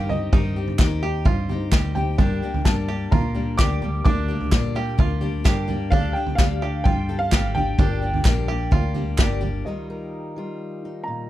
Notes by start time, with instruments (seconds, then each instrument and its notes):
Already playing: fingered electric bass G2, steel-string acoustic guitar G3 C4 D#4, five-string banjo G4
0.09 steel-string acoustic guitar C4 D#4 G4, upright piano D#5, floor tom
0.33 fingered electric bass G2, steel-string acoustic guitar D#3 G3 C4 D#4 G4, five-string banjo D#4, kick, floor tom
0.56 steel-string acoustic guitar C4 D#4 G4
0.67 floor tom
0.79 fingered electric bass D#2, steel-string acoustic guitar D#3 G3 C4 D#4 G4, kick, snare, clap
1.02 steel-string acoustic guitar C4 D#4 G4, five-string banjo G4
1.25 fingered electric bass G2, steel-string acoustic guitar G3 C4 D#4 G4, five-string banjo F4, kick, floor tom
1.49 steel-string acoustic guitar C4 D#4 G4, floor tom
1.72 fingered electric bass D2, steel-string acoustic guitar D#3 G3 C4 D#4 G4, five-string banjo G4, kick, snare, clap
1.95 steel-string acoustic guitar C4 D#4 G4, upright piano G5, floor tom
2.18 fingered electric bass G2, steel-string acoustic guitar G2 D3 G3 A#3 D4 G4, five-string banjo D4, kick, floor tom
2.42 steel-string acoustic guitar G3 A#3 D4 G4
2.54 floor tom
2.65 steel-string acoustic guitar G2 D3 G3 A#3 D4 G4, fingered electric bass G2, upright piano A5, kick, snare, clap
2.88 steel-string acoustic guitar G3 A#3 D4 G4, five-string banjo G4
3.11 fingered electric bass A#2, steel-string acoustic guitar G3 A#3 D4 G4, five-string banjo F4, upright piano A#5, kick, floor tom
3.35 steel-string acoustic guitar G3 A#3 D4 G4, floor tom
3.58 fingered electric bass D2, steel-string acoustic guitar G2 D3 G3 A#3 D4 G4, five-string banjo G4, upright piano D6, kick, snare, clap
3.82 steel-string acoustic guitar G3 A#3 D4 G4, floor tom
4.05 fingered electric bass D2, steel-string acoustic guitar G2 D3 G3 A#3 D4 G4, five-string banjo D4, upright piano D6, kick, floor tom
4.28 steel-string acoustic guitar G3 A#3 D4 G4
4.41 floor tom
4.52 steel-string acoustic guitar G2 D3 G3 A#3 D4 G4, fingered electric bass A#2, kick, snare, clap
4.75 steel-string acoustic guitar G3 A#3 D4 G4, five-string banjo G4
4.98 fingered electric bass D2, steel-string acoustic guitar G3 A#3 D4 G4, five-string banjo F4, kick, floor tom
5.21 steel-string acoustic guitar G3 A#3 D4 G4, floor tom
5.44 steel-string acoustic guitar G2 D3 G3 A#3 D4 G4, fingered electric bass G2, five-string banjo G4, kick, snare, clap
5.68 steel-string acoustic guitar G3 A#3 D4 G4, floor tom
5.90 fingered electric bass D2, steel-string acoustic guitar D3 G3 D4 G4 A4, five-string banjo D4, upright piano F5, kick, floor tom
6.13 steel-string acoustic guitar D4 G4 A4, upright piano G5
6.26 floor tom
6.35 fingered electric bass D2, steel-string acoustic guitar D3 G3 D4 G4, upright piano F5, kick, snare, clap
6.40 steel-string acoustic guitar A4
6.62 steel-string acoustic guitar D4 G4 A4, five-string banjo G4
6.84 fingered electric bass G2, steel-string acoustic guitar G3 D4 G4, five-string banjo F4, upright piano G5, kick, floor tom
6.88 steel-string acoustic guitar A4
7.09 steel-string acoustic guitar D4 G4 A4, floor tom
7.19 upright piano F5
7.32 fingered electric bass G#1, steel-string acoustic guitar D3 G3 D4 G4 A4, five-string banjo G4, kick, snare, clap
7.55 steel-string acoustic guitar D4 G4 A4, upright piano G5, floor tom
7.78 fingered electric bass G1, steel-string acoustic guitar G2 D3 G3 A#3 D4 G4, five-string banjo D4, kick, floor tom
8.02 steel-string acoustic guitar G3 A#3 D4 G4
8.14 floor tom
8.25 fingered electric bass A#1, steel-string acoustic guitar G2 D3 G3 A#3 D4 G4, kick, snare, clap
8.48 steel-string acoustic guitar G3 A#3 D4 G4, five-string banjo G4
8.71 fingered electric bass D2, steel-string acoustic guitar G3 A#3 D4 G4, five-string banjo F4, kick, floor tom
8.94 steel-string acoustic guitar G3 A#3 D4 G4, floor tom
9.18 fingered electric bass G1, steel-string acoustic guitar G2 D3 G3 A#3 D4 G4, five-string banjo G4, kick, snare, clap
9.41 steel-string acoustic guitar G3 A#3 D4 G4, floor tom
9.65 steel-string acoustic guitar D#3 G3 D#4 F4 A#4, upright piano D#5
9.90 steel-string acoustic guitar A#4
10.36 steel-string acoustic guitar G3 F4
10.85 steel-string acoustic guitar D#4
11.04 steel-string acoustic guitar A#2, upright piano A#5